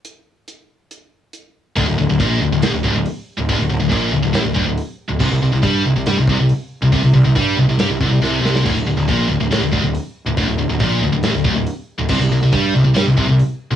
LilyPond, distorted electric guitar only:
\new Staff \with { instrumentName = "Distorted electric guitar" } { \clef bass \time 4/4 \key c \mixolydian \tempo 4 = 139 r1 | d,16 d,16 d,16 d,16 bes,8 d,16 d,16 a,16 d,16 d,16 d,16 r8. d,16 | d,16 d,16 d,16 d,16 bes,8 d,16 d,16 a,16 d,16 d,16 d,16 r8. d,16 | c16 c16 c16 c16 g8 c16 c16 g16 c16 c16 c16 r8. c16 |
c16 c16 c16 c16 g8 c16 c16 g16 c16 c16 c16 c8 c8 | d,16 d,16 d,16 d,16 bes,8 d,16 d,16 a,16 d,16 d,16 d,16 r8. d,16 | d,16 d,16 d,16 d,16 bes,8 d,16 d,16 a,16 d,16 d,16 d,16 r8. d,16 | c16 c16 c16 c16 g8 c16 c16 g16 c16 c16 c16 r8. c16 | }